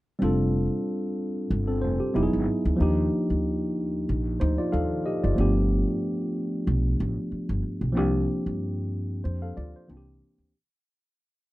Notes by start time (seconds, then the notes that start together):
0.19 F1 G3 C4 D4
0.23 F4 A4
1.50 G1
1.68 C4 A4
1.82 F1 C5
2.00 G4
2.14 E1 F#3 B3 D#4 E4 G4
2.23 G#4
2.33 G#1
2.65 D2
2.76 F3 A#3 D4
2.80 D#2 D#4 G4
3.30 D2
4.09 A#1
4.40 D2 D#4 C5
4.58 F4 D5
4.72 D#2 A4 F5
5.06 G4 D#5
5.23 F#1 F4 D5
5.35 G1 F3 A3 B3
5.39 D4 G4
6.67 B1
7.00 A1
7.32 muted upright bass stroke
7.49 G1
7.81 B1
7.92 F3 A#3 C4
7.97 C2 D4 G4
8.46 G2
9.24 F2 C5
9.42 A4 F5
9.57 D2 F4 D5
9.76 C5
9.88 C2 E3 A#3 C4 D4 F4
9.97 G4
10.22 muted upright bass stroke
10.38 D2